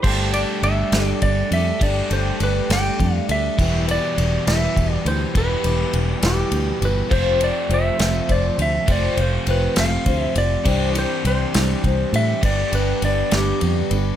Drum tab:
CC |x-----|------|------|------|
RD |-xxxxx|xxxxxx|xxxxxx|xxxxxx|
SD |---o--|---o--|---o--|---o--|
BD |o---o-|o---o-|o---o-|o-----|

CC |x-----|------|------|------|
RD |-xxxxx|xxxxxx|xxxxxx|xxxxxx|
SD |---o--|---o--|---o--|---o--|
BD |o---o-|o---o-|o---o-|o-----|